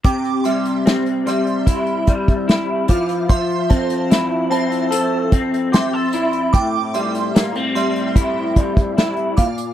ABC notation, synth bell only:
X:1
M:4/4
L:1/16
Q:1/4=74
K:C
V:1 name="Synth bell"
[gd']2 [ec']2 z2 [ec']4 z4 [fd'] z | [ec']2 [ca]2 z2 [ca]4 z2 [ec']3 z | [gd']2 [ec']2 z2 [ec']4 z4 [fd'] z |]